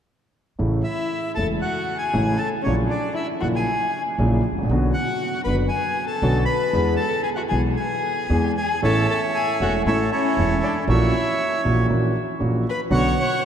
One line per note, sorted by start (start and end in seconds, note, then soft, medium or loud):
0.59 0.81 A1 soft
0.59 0.81 A1 medium
0.59 0.81 A2 soft
0.59 0.80 C#3 soft
0.59 0.81 E3 soft
0.59 0.81 A3 soft
0.59 0.81 E4 soft
0.84 1.33 E4 soft
0.84 1.32 E5 medium
1.35 1.58 E1 soft
1.35 1.58 E2 soft
1.35 1.58 C#3 soft
1.35 1.58 E3 soft
1.35 1.58 A3 soft
1.35 1.59 E4 soft
1.35 1.47 A4 medium
1.35 1.47 A5 medium
1.60 1.97 F#4 soft
1.60 1.98 F#5 medium
1.98 2.35 G#4 medium
1.98 2.39 G#5 medium
2.13 2.35 A1 soft
2.13 2.35 A1 medium
2.13 2.35 A2 medium
2.13 2.35 C#3 soft
2.13 2.35 E3 soft
2.13 2.35 A3 soft
2.13 2.35 E4 medium
2.37 2.49 A4 soft
2.37 2.49 A5 medium
2.62 2.87 C#3 soft
2.62 2.74 C#4 soft
2.62 2.75 C#5 medium
2.66 2.87 A#1 medium
2.66 2.87 A#2 medium
2.66 2.87 F#3 soft
2.66 2.87 A#3 soft
2.66 2.87 E4 soft
2.88 3.13 D4 soft
2.88 3.14 D5 medium
3.14 3.26 E4 medium
3.14 3.27 E5 medium
3.41 3.63 A#1 soft
3.41 3.63 A#2 soft
3.41 3.63 C#3 soft
3.41 3.63 F#3 soft
3.41 3.63 A#3 soft
3.41 3.64 E4 soft
3.41 3.46 F#4 medium
3.41 3.48 F#5 soft
3.55 4.02 G#4 medium
3.55 4.03 G#5 medium
4.18 4.40 A#1 medium
4.18 4.40 A#2 medium
4.18 4.40 C#3 medium
4.18 4.40 F#3 soft
4.18 4.40 A#3 soft
4.18 4.40 E4 medium
4.52 4.57 G#1 soft
4.58 4.63 A1 soft
4.58 4.64 A1 soft
4.63 4.69 A#1 medium
4.63 4.70 A#1 medium
4.69 4.91 B1 medium
4.69 4.91 B2 medium
4.69 4.91 D3 medium
4.69 4.92 B3 soft
4.69 4.91 C#4 soft
4.69 4.92 F#4 medium
4.94 5.42 F#4 medium
4.94 5.41 F#5 medium
5.44 5.67 F#1 medium
5.44 5.67 F#1 soft
5.44 5.68 F#2 soft
5.44 5.67 D3 soft
5.44 5.68 B3 soft
5.44 5.68 C#4 soft
5.44 5.68 F#4 soft
5.44 5.56 B4 medium
5.44 5.56 B5 medium
5.69 6.06 G#4 medium
5.69 6.05 G#5 medium
6.07 6.44 A4 medium
6.07 6.44 A5 medium
6.22 6.44 B1 medium
6.22 6.44 B2 medium
6.22 6.44 D3 soft
6.22 6.44 B3 medium
6.22 6.44 C#4 soft
6.22 6.44 F#4 medium
6.45 6.95 B4 medium
6.45 6.94 B5 medium
6.73 6.95 E2 medium
6.73 6.95 E3 medium
6.73 6.95 G#3 soft
6.73 6.95 B3 soft
6.73 6.96 G#4 medium
6.96 7.23 A4 medium
6.96 7.22 A5 medium
7.23 7.29 G#4 medium
7.23 7.30 G#5 medium
7.35 7.43 F#4 soft
7.35 7.42 F#5 medium
7.49 7.73 B1 soft
7.49 7.73 B1 medium
7.49 7.73 B2 soft
7.49 7.73 E3 soft
7.49 7.73 G#3 soft
7.49 7.73 B3 soft
7.49 7.61 G#4 medium
7.49 7.73 G#4 soft
7.49 7.61 G#5 medium
7.76 8.51 G#4 medium
7.76 8.52 G#5 medium
8.29 8.52 E2 medium
8.29 8.52 E3 medium
8.29 8.52 G#3 soft
8.29 8.52 B3 soft
8.29 8.52 G#4 medium
8.57 8.81 G#4 medium
8.57 8.81 G#5 medium
8.82 9.04 A1 medium
8.82 9.04 A2 medium
8.82 9.04 E3 medium
8.82 9.04 A3 soft
8.82 9.04 C#4 medium
8.82 9.07 A4 medium
8.82 9.04 A4 medium
8.82 9.82 C#5 medium
8.82 9.82 E5 medium
8.82 9.07 A5 medium
9.09 9.20 A4 medium
9.09 9.22 A5 medium
9.35 9.59 G#4 medium
9.35 9.61 G#5 medium
9.60 9.82 E1 soft
9.60 9.82 E2 soft
9.60 9.82 E3 soft
9.60 9.82 A3 soft
9.60 9.82 C#4 soft
9.60 9.72 F#4 medium
9.60 9.82 A4 soft
9.60 9.73 F#5 medium
9.85 10.07 A1 medium
9.85 10.08 A1 soft
9.85 10.08 A2 soft
9.85 10.08 E3 soft
9.85 10.08 A3 soft
9.85 10.08 C#4 soft
9.85 9.98 E4 soft
9.85 10.10 A4 soft
9.85 10.08 A4 soft
9.85 10.11 C#5 medium
9.85 9.99 E5 medium
10.12 10.60 C#4 medium
10.12 10.85 E4 medium
10.12 10.85 A4 medium
10.12 10.65 C#5 medium
10.37 10.59 E1 soft
10.37 10.59 E2 soft
10.37 10.59 E3 soft
10.37 10.59 A3 soft
10.37 10.59 C#4 soft
10.37 10.60 A4 soft
10.63 10.76 D4 medium
10.63 10.75 D5 medium
10.88 11.09 A#1 medium
10.88 11.10 A#1 medium
10.88 11.10 A#2 medium
10.88 11.10 E3 medium
10.88 11.10 A#3 medium
10.88 11.10 C#4 medium
10.88 11.61 E4 medium
10.88 11.10 F#4 medium
10.88 11.87 C#5 medium
10.88 11.61 E5 medium
11.65 11.86 A#1 medium
11.65 11.86 A#1 soft
11.65 11.86 A#2 soft
11.65 11.86 E3 soft
11.65 11.86 A#3 soft
11.65 11.86 C#4 soft
11.65 11.86 F#4 soft
11.90 12.11 A#1 medium
11.90 12.11 A#1 soft
11.90 12.12 A#2 soft
11.90 12.11 E3 soft
11.90 12.11 A#3 soft
11.90 12.12 C#4 soft
11.90 12.12 F#4 soft
12.40 12.62 A#1 soft
12.40 12.62 A#1 medium
12.40 12.62 A#2 soft
12.40 12.62 E3 soft
12.40 12.61 A#3 soft
12.40 12.62 C#4 soft
12.40 12.62 F#4 soft
12.69 12.80 B4 medium
12.69 12.80 B5 medium
12.90 13.12 B1 medium
12.90 13.12 B2 medium
12.90 13.12 D3 medium
12.90 13.12 B3 medium
12.90 13.12 C#4 medium
12.90 13.12 F#4 medium
12.90 13.45 F#5 medium
12.90 13.19 C#6 medium
12.94 13.16 C#5 medium
13.20 13.43 C#5 medium
13.20 13.42 C#6 medium